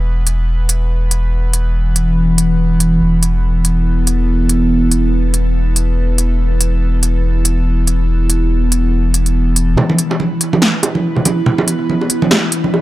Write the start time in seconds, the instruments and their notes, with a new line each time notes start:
Already playing: sub bass E1, synth drone E3 B3 B4
0.27 closed hi-hat
0.69 closed hi-hat
1.11 closed hi-hat
1.53 closed hi-hat
1.96 closed hi-hat
2.38 closed hi-hat
2.80 closed hi-hat
3.01 sub bass E1, synth drone A4
3.23 closed hi-hat
3.65 closed hi-hat
4.07 closed hi-hat
4.49 closed hi-hat
4.91 closed hi-hat
5.34 closed hi-hat
5.76 closed hi-hat
6.18 closed hi-hat
6.61 closed hi-hat
7.03 closed hi-hat
7.45 closed hi-hat
7.87 closed hi-hat
8.30 closed hi-hat
8.72 closed hi-hat
9.14 closed hi-hat
9.26 closed hi-hat
9.56 closed hi-hat
9.77 sub bass E1, synth drone E3 B3 B4, high bongo, low conga
9.90 high conga
9.98 closed hi-hat
10.11 high bongo
10.20 high conga
10.41 closed hi-hat
10.53 high bongo, high conga
10.62 snare
10.83 sub bass E1, closed hi-hat, high bongo
10.95 high conga
11.16 low conga
11.25 sub bass E1, closed hi-hat, high bongo, high conga
11.46 low conga
11.58 high bongo, high conga
11.68 sub bass E1, closed hi-hat
11.90 high conga
12.01 high bongo
12.10 sub bass E1, closed hi-hat
12.22 high conga
12.31 snare, high bongo
12.52 sub bass D#1, closed hi-hat
12.64 high conga
12.73 sub bass B1, high bongo